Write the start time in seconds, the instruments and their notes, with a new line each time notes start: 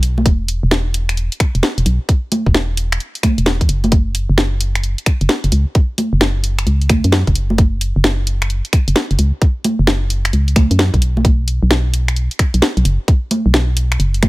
Already playing: fm bass B1
0.03 open hi-hat
0.18 high conga
0.26 fm bass E1, kick, closed hi-hat
0.48 open hi-hat
0.63 fm bass E1
0.71 snare
0.94 open hi-hat
1.09 finger snap, closed hi-hat
1.17 closed hi-hat
1.32 closed hi-hat
1.40 finger snap, kick, open hi-hat
1.55 fm bass E1, closed hi-hat
1.63 snare
1.78 fm bass E1, closed hi-hat
1.86 fm bass B1, open hi-hat
2.09 kick, closed hi-hat
2.32 open hi-hat, high conga
2.46 fm bass E1, kick
2.54 snare
2.77 open hi-hat
2.92 finger snap, closed hi-hat
3.00 closed hi-hat
3.15 open hi-hat
3.23 finger snap, kick, open hi-hat, high conga
3.38 fm bass E1, closed hi-hat
3.46 snare
3.61 fm bass E2, kick, closed hi-hat
3.69 fm bass F#1, open hi-hat
3.84 closed hi-hat, high conga
3.92 kick, closed hi-hat
4.15 open hi-hat
4.29 fm bass F#1
4.38 snare
4.61 open hi-hat
4.75 finger snap, closed hi-hat
4.84 closed hi-hat
4.98 closed hi-hat
5.06 finger snap, kick, open hi-hat
5.21 fm bass F#1, closed hi-hat
5.29 snare
5.44 fm bass F#1, closed hi-hat
5.52 fm bass C#2, open hi-hat
5.75 kick, closed hi-hat
5.98 open hi-hat, high conga
6.13 fm bass F#1
6.21 snare
6.44 open hi-hat
6.59 finger snap, closed hi-hat
6.67 fm bass C#2, closed hi-hat
6.82 open hi-hat
6.89 finger snap, kick, open hi-hat, high conga
7.04 fm bass F#2, closed hi-hat
7.12 snare
7.27 fm bass F#1, kick, closed hi-hat
7.35 open hi-hat
7.50 high conga
7.58 kick, closed hi-hat
7.81 open hi-hat
7.96 fm bass F#1
8.04 snare
8.27 open hi-hat
8.42 finger snap, closed hi-hat
8.50 closed hi-hat
8.65 closed hi-hat
8.73 finger snap, kick, open hi-hat
8.88 fm bass F#1, closed hi-hat
8.96 snare
9.11 fm bass F#1, closed hi-hat
9.19 fm bass C#2, open hi-hat
9.42 kick, closed hi-hat
9.64 open hi-hat, high conga
9.79 fm bass F#1
9.87 snare
10.10 open hi-hat
10.25 finger snap, closed hi-hat
10.33 fm bass C#2, closed hi-hat
10.48 open hi-hat
10.56 finger snap, kick, open hi-hat, high conga
10.71 fm bass F#2, closed hi-hat
10.79 snare
10.94 fm bass B1, kick, closed hi-hat
11.02 open hi-hat
11.17 high conga
11.25 kick, closed hi-hat
11.48 open hi-hat
11.63 fm bass B1
11.71 snare
11.94 open hi-hat
12.08 finger snap, closed hi-hat
12.16 closed hi-hat
12.31 closed hi-hat
12.39 finger snap, kick, open hi-hat
12.54 fm bass B1, closed hi-hat
12.62 snare
12.77 fm bass B1, closed hi-hat
12.85 fm bass F#1, open hi-hat
13.08 kick, closed hi-hat
13.31 open hi-hat, high conga
13.46 fm bass B1
13.54 snare
13.77 open hi-hat
13.92 finger snap, closed hi-hat
14.00 fm bass F#1, closed hi-hat
14.14 open hi-hat
14.23 finger snap, kick, open hi-hat, high conga